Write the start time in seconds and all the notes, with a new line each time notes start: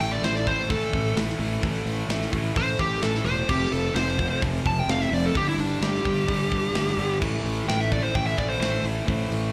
Already playing: A2 E3 A3
0.00 A1 G5, open hi-hat
0.11 D5
0.22 A1 A2 E3 A3 C5, snare, open hi-hat
0.36 D5, snare
0.46 A2 E3 A3 C5, kick, open hi-hat
0.69 A1 A2 E3 A3 A4, kick, open hi-hat
0.93 A1, kick, open hi-hat
1.16 A1 A2 E3 A3, snare, open hi-hat
1.29 snare
1.39 A1 A2 E3 A3, open hi-hat
1.61 A1 A2 E3 A3, kick, open hi-hat
1.86 A1, open hi-hat
2.08 A1 A2 E3 A3, snare, open hi-hat
2.22 snare
2.32 A1 A2 E3 A3, kick, open hi-hat
2.55 A1 A2 E3 A3 C5, kick, open hi-hat
2.79 A1 G4, kick
3.02 A1 A2 E3 A3 A4, snare, open hi-hat
3.15 snare
3.24 E1 A2 E3 A3 C5, open hi-hat
3.48 F1 F2 C3 F3 G4, kick, crash
3.71 F1 A4, open hi-hat
3.95 F1 F2 C3 F3 C5, snare, open hi-hat
4.08 snare
4.18 F2 C3 F3, kick, open hi-hat
4.42 F1 F2 C3 F3, kick, open hi-hat
4.65 F1 A5, kick, open hi-hat
4.79 G5
4.87 F1 F2 C3 F3 F5, snare, open hi-hat
5.01 E5, snare
5.11 F1 F2 C3 F3 D5, open hi-hat
5.26 A4
5.34 G1 G2 D3 G3 G4, kick, open hi-hat
5.48 E4
5.58 G1 D4, open hi-hat
5.81 G1 G2 D3 G3 G4, snare, open hi-hat
5.95 snare
6.04 G1 G2 D3 G3, kick
6.27 G1 G2 D3 G3, kick, open hi-hat
6.52 G1, kick
6.74 G1 G2 D3 G3, snare, open hi-hat
6.87 snare
6.97 G1 G2 D3 G3, open hi-hat
7.21 A1 A2 E3 A3, kick, crash
7.44 A1, open hi-hat
7.67 A1 A2 E3 A3 G5, snare
7.80 E5, snare
7.90 A2 E3 A3 D5, kick, open hi-hat
8.03 C5
8.14 A1 A2 E3 A3 G5, kick, open hi-hat
8.26 E5
8.37 A1 D5, kick, open hi-hat
8.49 C5
8.60 A1 A2 E3 A3 C5, snare, open hi-hat
8.83 A1 A2 E3 A3, open hi-hat
9.06 A1 A2 E3 A3, kick, open hi-hat
9.31 A1, open hi-hat